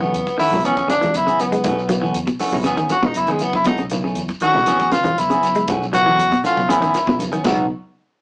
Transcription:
Already playing: tine electric piano C#3 F#3 B3 E4, tenor saxophone B3
0.01 clean electric guitar E3 A3 C#4 F#4, shekere
0.13 fingered electric bass E2, closed hi-hat, shekere
0.27 kick, closed hi-hat, shekere
0.38 clean electric guitar D#3 E3 A3 C#4 F#4, tenor saxophone E4, muted fingered electric bass stroke, open hi-hat, high conga, shekere
0.51 fingered electric bass B1, tine electric piano C#3 F#3 B3 E4, low conga, shekere
0.63 fingered electric bass A1, clean electric guitar E3 B3 C#4 G#4, tenor saxophone C#4, closed hi-hat, high conga, shekere
0.77 clean electric guitar B3 C#4 G#4, kick, closed hi-hat, shekere
0.88 fingered electric bass G#1, clean electric guitar C#3, tenor saxophone D4, closed hi-hat, high conga, shekere
1.01 clean electric guitar E3, closed hi-hat, high conga, low conga, shekere
1.13 tine electric piano C#3 F#3 B3 E4, tenor saxophone E4, muted fingered electric bass stroke, closed hi-hat, shekere
1.26 fingered electric bass G#1, clean electric guitar C#3 B3 C#4 G#4, closed hi-hat, shekere
1.39 tine electric piano C#3 F#3 B3 E4, tenor saxophone B3, closed hi-hat, shekere
1.52 clean electric guitar G#3, closed hi-hat, high conga, shekere
1.64 fingered electric bass B1, clean electric guitar E3 A3 C#4 F#4, kick, closed hi-hat, low conga, shekere
1.78 shekere
1.89 tine electric piano C#3 F#3 B3 E4, clean electric guitar F#3, closed hi-hat, high conga, shekere
2.02 clean electric guitar E3 A3 C#4 F#4, shekere
2.14 fingered electric bass E2, closed hi-hat, shekere
2.27 clean electric guitar B2, kick, closed hi-hat, shekere
2.39 clean electric guitar E3 A3 C#4 F#4, muted fingered electric bass stroke, open hi-hat, high conga, shekere
2.52 fingered electric bass B1, tine electric piano C#3 F#3 B3 E4, kick, low conga, shekere
2.64 fingered electric bass A1, clean electric guitar C#3 E3 B3 C#4 G#4, closed hi-hat, shekere
2.77 clean electric guitar D#3 B3 C#4 G#4, kick, closed hi-hat, shekere
2.89 fingered electric bass G#1, tenor saxophone F#4, closed hi-hat, high conga, shekere
3.03 clean electric guitar B2, tenor saxophone D#4, kick, high conga, low conga, shekere
3.14 tine electric piano C#3 F#3 B3 E4, tenor saxophone E4, muted fingered electric bass stroke, closed hi-hat, shekere
3.27 fingered electric bass G#1, clean electric guitar D#3 B3 C#4 G#4, closed hi-hat, shekere
3.31 tenor saxophone G#3
3.39 tine electric piano C#3 F#3 B3 E4, tenor saxophone B3, closed hi-hat, shekere
3.53 tenor saxophone E4, kick, high conga, shekere
3.64 fingered electric bass B1, clean electric guitar B2 E3 A3 C#4 F#4, tenor saxophone D#4, kick, closed hi-hat, low conga, shekere
3.78 clean electric guitar C#3, closed hi-hat, shekere
3.90 tine electric piano C#3 F#3 B3 E4, closed hi-hat, high conga, shekere
4.04 clean electric guitar C#3 A3 C#4, shekere
4.15 fingered electric bass E2, closed hi-hat, shekere
4.28 kick, closed hi-hat, shekere
4.40 clean electric guitar D#3 E3 A3 C#4 F#4, tenor saxophone F#4, muted fingered electric bass stroke, closed hi-hat, high conga, shekere
4.54 fingered electric bass B1, tine electric piano C#3 F#3 B3 E4, low conga, shekere
4.66 fingered electric bass A1, clean electric guitar E3 B3 C#4 G#4, closed hi-hat, high conga, shekere
4.79 clean electric guitar B3 C#4 G#4, kick, closed hi-hat, shekere
4.92 fingered electric bass G#1, clean electric guitar C#3, tenor saxophone F4, closed hi-hat, high conga, shekere
5.04 clean electric guitar E3, closed hi-hat, high conga, low conga, shekere
5.17 tine electric piano C#3 F#3 B3 E4, tenor saxophone E4, muted fingered electric bass stroke, closed hi-hat, shekere
5.30 fingered electric bass G#1, clean electric guitar C#3 B3 C#4 G#4, closed hi-hat, high conga, shekere
5.42 tine electric piano C#3 F#3 B3 E4, closed hi-hat, shekere
5.55 clean electric guitar G#3, closed hi-hat, shekere
5.68 fingered electric bass B1, clean electric guitar E3 A3 C#4 F#4, kick, closed hi-hat, low conga, shekere
5.82 high conga, shekere
5.92 tine electric piano C#3 F#3 B3 E4, clean electric guitar F#3, tenor saxophone F#4, closed hi-hat, high conga, shekere
6.06 clean electric guitar E3 A3 C#4 F#4, shekere
6.17 fingered electric bass E2, closed hi-hat, shekere
6.32 clean electric guitar B2, kick, closed hi-hat, shekere
6.43 clean electric guitar E3 A3 C#4 F#4, tenor saxophone F4, muted fingered electric bass stroke, closed hi-hat, high conga, shekere
6.56 fingered electric bass B1, tine electric piano C#3 F#3 B3 E4, kick, shekere
6.68 fingered electric bass A1, clean electric guitar C#3 E3 B3 C#4 G#4, tenor saxophone E4, closed hi-hat, high conga, shekere
6.81 clean electric guitar D#3 B3 C#4 G#4, kick, closed hi-hat, shekere
6.94 fingered electric bass G#1, closed hi-hat, high conga, shekere
7.07 clean electric guitar B2, kick, high conga, low conga, shekere
7.19 tine electric piano C#3 F#3 B3 E4, muted fingered electric bass stroke, closed hi-hat, high conga, shekere
7.32 fingered electric bass G#1, clean electric guitar D#3 B3 C#4 G#4, closed hi-hat, shekere
7.44 fingered electric bass B1, clean electric guitar B2 F#3 B3 D#4 F#4, tine electric piano C#3 F#3 B3 D#4, kick, crash, low conga, shekere

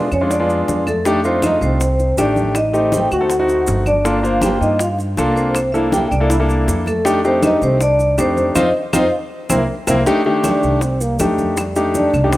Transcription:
Already playing: vibraphone D5
0.12 upright bass F2, trombone C#4, vibraphone C#5, high conga, claves, maracas
0.21 grand piano G#3 C#4 D4 F4
0.30 trombone D4, vibraphone D5, high bongo, high conga, maracas
0.40 grand piano G#3 B3 D4 F4
0.49 high bongo, high conga, maracas
0.68 upright bass F2, high bongo, low bongo, high conga, maracas
0.87 trombone A3, vibraphone A4, high bongo, high conga, claves, maracas
1.05 grand piano A3 D4 D#4 G4, high bongo, high conga, maracas
1.24 grand piano A3 D4 D#4 F4, trombone C4, vibraphone C5, high conga, maracas
1.42 trombone D#4, vibraphone D#5, high bongo, high conga, claves, maracas
1.61 upright bass C2, trombone C4, vibraphone C5, high conga, maracas
1.80 high bongo, high conga, maracas
1.99 high bongo, high conga, maracas
2.17 upright bass A1, grand piano D#3 A3 D4 G4, trombone D4, vibraphone D5, high bongo, low bongo, high conga, claves, maracas
2.36 high bongo, high conga, maracas
2.55 trombone D#4, vibraphone D#5, high bongo, high conga, claves, maracas
2.73 grand piano A3 C4 D#4 G4, high conga, maracas
2.92 trombone G4, vibraphone G5, high bongo, high conga, maracas
3.11 upright bass D2, trombone F#4, vibraphone F#5, high conga, claves, maracas
3.20 grand piano A3 C4 D#4 A4
3.30 high bongo, high conga, maracas
3.39 grand piano A3 C4 D#4 F#4
3.48 high bongo, high conga, maracas
3.67 upright bass G1, high bongo, low bongo, high conga, maracas
3.86 trombone D4, vibraphone D5, high bongo, high conga, claves, maracas
4.05 grand piano A#3 D4 F4 A4, high bongo, high conga, maracas
4.23 grand piano A#3 D4 F4 C5, trombone F4, vibraphone F5, high conga, maracas
4.41 trombone G4, vibraphone G5, high bongo, high conga, claves, maracas
4.61 upright bass G2, trombone D#4, vibraphone D#5, high conga, maracas
4.79 trombone F4, vibraphone F5, high bongo, high conga, maracas
4.99 high bongo, high conga, maracas
5.17 upright bass C2, grand piano A#3 D4 F4 A4, high bongo, low bongo, high conga, claves, maracas
5.29 trombone A#3, vibraphone A#4
5.36 trombone C4, vibraphone C5, high bongo, maracas
5.55 high bongo, high conga, claves, maracas
5.72 grand piano A#3 D4 E4 A4, trombone E4, vibraphone E5, high conga, maracas
5.92 trombone G4, vibraphone G5, high bongo, high conga, maracas
6.11 upright bass C2, trombone D4, vibraphone D5, high conga, claves, maracas
6.20 grand piano A#3 D4 E4 A4
6.30 trombone E4, vibraphone E5, high bongo, high conga, maracas
6.40 grand piano A#3 D4 E4 A4
6.49 high bongo, high conga, maracas
6.68 upright bass F2, high bongo, low bongo, high conga, maracas
6.86 trombone A3, vibraphone A4, high bongo, high conga, claves, maracas
7.05 grand piano A3 D4 D#4 G4, high bongo, high conga, maracas
7.24 grand piano A3 D4 D#4 G4, trombone C4, vibraphone C5, high conga, maracas
7.43 trombone D#4, vibraphone D#5, high bongo, high conga, claves, maracas
7.61 upright bass C2, trombone C4, vibraphone C5, high conga, maracas
7.81 trombone D4, vibraphone D5, high bongo, high conga, maracas
7.99 high bongo, high conga, maracas
8.18 upright bass F2, grand piano A3 D4 D#4 G4, trombone C4, vibraphone C5, high bongo, low bongo, high conga, claves, maracas
8.37 high bongo, high conga, maracas
8.55 upright bass F2, trombone C4, grand piano C4 D#4 F4, vibraphone C5 D#5 F5, low bongo, high conga, claves, maracas
8.93 upright bass F2, grand piano C4 D#4 F4, trombone C4, vibraphone C5 D#5 F5, low bongo, high conga, claves, maracas
9.49 upright bass C2, grand piano A#3 C4 E4, trombone C4, vibraphone A#4 C5 E5, low bongo, high conga, claves, maracas
9.87 upright bass C2, grand piano A#3 C4 E4, trombone C4, vibraphone A#4 C5 E5, low bongo, high conga, claves, maracas
10.06 grand piano A3 D4 D#4 G4, high bongo, high conga, maracas
10.25 grand piano D#3 A3 D4 G4, high bongo, high conga
10.44 trombone D4, high bongo, high conga, claves, maracas
10.63 upright bass C2, high conga, maracas
10.81 trombone C4, high bongo, high conga, maracas
11.01 trombone A#3, high bongo, high conga, maracas
11.19 upright bass F2, grand piano A3 D4 D#4 G4, trombone A3, high bongo, low bongo, high conga, claves, maracas
11.38 high bongo, high conga, maracas
11.57 trombone G3, high bongo, high conga, claves, maracas
11.76 grand piano A3 D4 D#4 G4, high bongo, high conga, maracas
11.95 trombone D4, high bongo, high conga, maracas
12.14 upright bass C2, high conga, low conga, claves, maracas
12.24 grand piano A3 D4 D#4 G4
12.32 trombone C4, high bongo, high conga, low conga, maracas

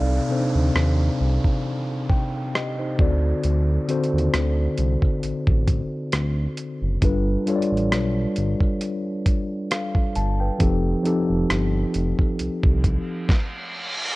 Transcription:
Already playing: analog synth bass C2, tine electric piano C3 C4 D#4 A4 D5 F5, downlifter
0.29 tine electric piano C3 C4 D4 A4 C5
0.37 tine electric piano D#4
0.55 analog synth bass D2
0.75 analog synth bass D#2, cross-stick
1.20 analog synth bass C2
1.44 kick
2.09 tine electric piano G5, kick
2.55 tine electric piano G4 D#5, cross-stick
2.79 tine electric piano D#4 C5
2.98 analog synth bass D2, tine electric piano D3 C4 F#4 A4 D5, kick
3.44 analog synth bass D2, closed hi-hat
3.88 tine electric piano D3 C4 F#4 A4 C5, closed hi-hat
4.04 closed hi-hat
4.13 analog synth bass D#2
4.18 closed hi-hat
4.34 analog synth bass D2, cross-stick, closed hi-hat
4.78 analog synth bass C2, closed hi-hat
5.02 kick
5.23 analog synth bass A1, closed hi-hat
5.47 analog synth bass A1, kick
5.68 kick, closed hi-hat
6.13 analog synth bass D2, cross-stick, closed hi-hat
6.57 closed hi-hat
6.82 analog synth bass F#1
7.01 analog synth bass G1, tine electric piano G3 D4 F4 A4 B4, kick, closed hi-hat
7.46 tine electric piano G3 D4 F4 A4 C#5, closed hi-hat
7.56 tine electric piano D5
7.62 closed hi-hat
7.72 analog synth bass A1
7.77 closed hi-hat
7.92 analog synth bass B1, cross-stick, closed hi-hat
8.36 analog synth bass G1, closed hi-hat
8.61 kick
8.81 closed hi-hat
9.26 kick, closed hi-hat
9.71 tine electric piano A4 F5, cross-stick, closed hi-hat
9.95 kick
10.15 analog synth bass G1, tine electric piano A5, closed hi-hat
10.40 tine electric piano B4 G5
10.59 analog synth bass F1, tine electric piano F3 C4 D#4 G4 A4, kick, closed hi-hat
11.03 tine electric piano F3 C4 D#4 G4 A4, closed hi-hat
11.30 analog synth bass F1
11.50 analog synth bass G1, cross-stick, closed hi-hat
11.94 analog synth bass F1, closed hi-hat
12.19 kick
12.39 analog synth bass C2, closed hi-hat, reverse cymbal
12.63 analog synth bass C2, kick
12.84 kick, closed hi-hat
13.29 kick, snare

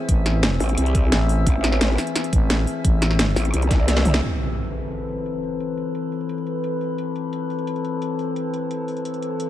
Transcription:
Already playing: synth drone E3 C4 G#4 E5
0.09 fm bass A1, kick, closed hi-hat
0.26 snare, closed hi-hat
0.43 snare, closed hi-hat
0.60 wobble bass A1, open hi-hat
0.69 closed hi-hat
0.78 wobble bass C2, closed hi-hat
0.86 closed hi-hat
0.95 kick, closed hi-hat
1.12 fm bass A1, snare, closed hi-hat
1.29 open hi-hat
1.47 wobble bass A1, kick, closed hi-hat
1.64 snare, closed hi-hat
1.72 snare
1.81 snare, closed hi-hat
1.98 snare, open hi-hat
2.07 closed hi-hat
2.16 snare, closed hi-hat
2.24 closed hi-hat
2.33 fm bass A1, kick, closed hi-hat
2.50 snare, closed hi-hat
2.67 open hi-hat
2.85 fm bass A1, kick, closed hi-hat
3.02 snare, closed hi-hat
3.11 snare
3.19 snare, closed hi-hat
3.36 wobble bass A1, snare, open hi-hat
3.45 closed hi-hat
3.54 wobble bass C2, closed hi-hat
3.62 closed hi-hat
3.71 kick, snare, closed hi-hat
3.88 snare, closed hi-hat
3.97 snare
4.05 wobble bass C2, open hi-hat, mid tom
4.14 snare, closed hi-hat
4.22 synth drone E3 C4 A4 B4, impact
4.57 closed hi-hat
4.91 closed hi-hat
5.00 closed hi-hat
5.09 closed hi-hat
5.26 closed hi-hat
5.43 open hi-hat
5.60 closed hi-hat
5.78 closed hi-hat
5.95 closed hi-hat
6.12 open hi-hat
6.21 closed hi-hat
6.29 closed hi-hat
6.38 closed hi-hat
6.47 closed hi-hat
6.64 closed hi-hat
6.81 open hi-hat
6.98 closed hi-hat
7.16 closed hi-hat
7.33 closed hi-hat
7.50 open hi-hat
7.59 closed hi-hat
7.67 closed hi-hat
7.76 closed hi-hat
7.85 closed hi-hat
8.02 closed hi-hat
8.19 open hi-hat
8.36 closed hi-hat
8.54 closed hi-hat
8.71 closed hi-hat
8.88 open hi-hat
8.97 closed hi-hat
9.05 closed hi-hat
9.14 closed hi-hat
9.22 closed hi-hat
9.40 closed hi-hat

